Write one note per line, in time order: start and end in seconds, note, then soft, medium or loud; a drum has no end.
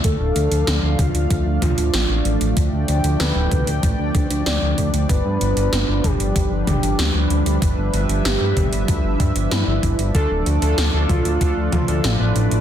0.04 0.17 D2 loud
0.04 10.11 F3 medium
0.04 5.05 A3 medium
0.04 12.61 D4 medium
0.04 1.00 A4 loud
0.04 7.58 D5 medium
0.04 2.54 F5 medium
0.04 kick loud
0.04 closed hi-hat medium
0.20 0.32 D1 medium
0.36 0.48 D2 medium
0.36 closed hi-hat medium
0.52 0.64 D2 medium
0.52 closed hi-hat medium
0.67 0.80 D2 loud
0.67 snare loud
0.67 closed hi-hat medium
0.83 0.96 D2 medium
0.99 1.11 D2 medium
0.99 1.46 F4 medium
0.99 kick loud
0.99 closed hi-hat medium
0.99 mid tom medium
1.15 1.27 D2 medium
1.15 closed hi-hat medium
1.30 1.43 D2 loud
1.30 kick loud
1.30 closed hi-hat medium
1.46 1.59 D2 medium
1.62 1.75 D2 medium
1.62 2.10 F4 medium
1.62 kick medium
1.62 closed hi-hat medium
1.62 mid tom medium
1.78 1.90 D2 medium
1.78 closed hi-hat medium
1.94 2.06 A1 loud
1.94 snare loud
1.94 closed hi-hat medium
2.09 2.22 A1 medium
2.25 2.38 A1 medium
2.25 closed hi-hat medium
2.41 2.54 A1 medium
2.41 closed hi-hat medium
2.57 2.69 D2 loud
2.57 5.07 G5 medium
2.57 kick loud
2.57 closed hi-hat medium
2.73 2.85 D2 medium
2.88 3.01 D2 medium
2.88 closed hi-hat medium
3.04 3.17 D2 medium
3.04 closed hi-hat medium
3.20 3.32 D2 loud
3.20 3.67 B4 medium
3.20 snare loud
3.20 closed hi-hat medium
3.36 3.48 D1 medium
3.52 3.64 D2 medium
3.52 kick loud
3.52 closed hi-hat medium
3.52 mid tom medium
3.67 3.80 D2 medium
3.67 closed hi-hat medium
3.83 3.96 A1 loud
3.83 kick loud
3.83 closed hi-hat medium
3.99 4.11 D2 medium
4.15 4.27 D2 medium
4.15 kick loud
4.15 closed hi-hat medium
4.30 4.43 D2 medium
4.30 closed hi-hat medium
4.46 4.59 D2 loud
4.46 4.94 D5 medium
4.46 snare loud
4.46 closed hi-hat medium
4.62 4.75 D2 medium
4.78 4.90 D2 medium
4.78 kick medium
4.78 closed hi-hat medium
4.94 5.06 D2 medium
4.94 closed hi-hat medium
5.09 5.22 G1 loud
5.09 10.11 G3 medium
5.09 10.11 B4 medium
5.09 6.06 B4 loud
5.09 kick loud
5.09 closed hi-hat medium
5.25 5.38 G2 medium
5.41 5.54 G1 medium
5.41 closed hi-hat medium
5.57 5.69 G1 medium
5.57 closed hi-hat medium
5.73 5.85 G1 loud
5.73 snare loud
5.73 closed hi-hat medium
5.88 6.01 G1 medium
6.04 6.17 G1 medium
6.04 6.52 G4 medium
6.04 kick loud
6.04 closed hi-hat medium
6.04 mid tom medium
6.20 6.32 G1 medium
6.20 closed hi-hat medium
6.36 6.48 G1 loud
6.36 kick loud
6.36 closed hi-hat medium
6.51 6.64 G1 medium
6.67 6.80 G1 medium
6.67 7.15 G4 medium
6.67 kick medium
6.67 closed hi-hat medium
6.67 mid tom medium
6.83 6.96 G1 medium
6.83 closed hi-hat medium
6.99 7.11 D2 loud
6.99 snare loud
6.99 closed hi-hat medium
7.15 7.27 D2 medium
7.30 7.43 D2 medium
7.30 closed hi-hat medium
7.46 7.59 D2 medium
7.46 closed hi-hat medium
7.62 7.75 G1 loud
7.62 10.12 E5 medium
7.62 kick loud
7.62 closed hi-hat medium
7.78 7.90 G1 medium
7.93 8.06 G1 medium
7.93 closed hi-hat medium
8.09 8.22 G1 medium
8.09 closed hi-hat medium
8.25 8.38 G1 loud
8.25 8.73 G4 medium
8.25 snare loud
8.25 closed hi-hat medium
8.41 8.53 G2 medium
8.57 8.69 G1 medium
8.57 kick loud
8.57 closed hi-hat medium
8.57 mid tom medium
8.73 8.85 G1 medium
8.73 closed hi-hat medium
8.88 9.01 D2 loud
8.88 kick loud
8.88 closed hi-hat medium
9.04 9.17 G1 medium
9.20 9.32 G2 medium
9.20 kick loud
9.20 closed hi-hat medium
9.36 9.48 G1 medium
9.36 closed hi-hat medium
9.51 9.64 G2 loud
9.51 9.99 E4 medium
9.51 snare loud
9.51 closed hi-hat medium
9.67 9.80 G1 medium
9.83 9.96 G1 medium
9.83 kick medium
9.83 closed hi-hat medium
9.99 10.11 G1 medium
9.99 closed hi-hat medium
10.15 10.27 D2 loud
10.15 12.61 F3 medium
10.15 12.61 A3 medium
10.15 10.30 D4 medium
10.15 10.30 F4 medium
10.15 10.97 A4 loud
10.15 10.30 A4 medium
10.15 12.61 A4 medium
10.15 12.61 D5 medium
10.15 kick loud
10.15 closed hi-hat medium
10.31 10.43 D1 medium
10.46 10.59 D2 medium
10.46 closed hi-hat medium
10.62 10.75 D2 medium
10.62 10.90 D4 medium
10.62 10.90 F4 medium
10.62 10.90 A4 loud
10.62 closed hi-hat medium
10.78 10.90 D2 loud
10.78 snare loud
10.78 closed hi-hat medium
10.94 11.06 D2 medium
10.94 11.37 D4 medium
10.94 11.37 F4 medium
10.94 11.37 A4 loud
11.09 11.22 D2 medium
11.09 11.57 F4 medium
11.09 kick loud
11.09 closed hi-hat medium
11.09 mid tom medium
11.25 11.38 D2 medium
11.25 closed hi-hat medium
11.41 11.54 D2 loud
11.41 11.85 D4 medium
11.41 11.85 F4 medium
11.41 11.85 A4 medium
11.41 kick loud
11.41 closed hi-hat medium
11.57 11.69 D2 medium
11.72 11.85 D2 medium
11.72 12.20 F4 medium
11.72 kick medium
11.72 closed hi-hat medium
11.72 mid tom medium
11.88 12.01 D2 medium
11.88 12.13 D4 medium
11.88 12.13 F4 medium
11.88 12.13 A4 medium
11.88 closed hi-hat medium
12.04 12.17 A1 loud
12.04 snare loud
12.04 closed hi-hat medium
12.20 12.32 A1 medium
12.20 12.61 D4 medium
12.20 12.61 F4 medium
12.20 12.61 B4 medium
12.36 12.48 A1 medium
12.36 closed hi-hat medium
12.51 12.61 A1 medium
12.51 closed hi-hat medium